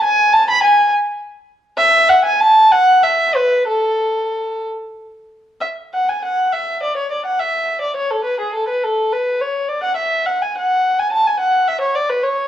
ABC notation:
X:1
M:6/8
L:1/16
Q:3/8=69
K:A
V:1 name="Violin"
g2 a b g2 z6 | e2 f g a2 f2 e2 B2 | A6 z6 | e2 f g f2 e2 d c d f |
e3 d c A B G A B A2 | B2 c2 d f e2 f g f2- | f g a g f2 e c d B c2 |]